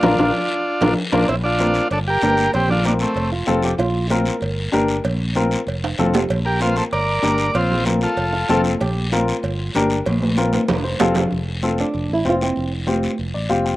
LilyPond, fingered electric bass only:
\new Staff \with { instrumentName = "Fingered electric bass" } { \clef bass \time 4/4 \key f \major \tempo 4 = 192 bes,,8 bes,,8 r4. bes,,8 r8 bes,,8 | bes,,2 g,,4 g,,4 | bes,,2 f,,4 f,,4 | bes,,2 g,,4 g,,4 |
bes,,2 f,,4 f,,4 | bes,,2 g,,4 g,,4 | bes,,2 f,,4 f,,4 | bes,,2 g,,4 g,,4 |
bes,,2 f,,4 f,,4 | f,,2 f,,8 a,,8 f,,4 | f,,2 f,,8 a,,8 f,,4 | }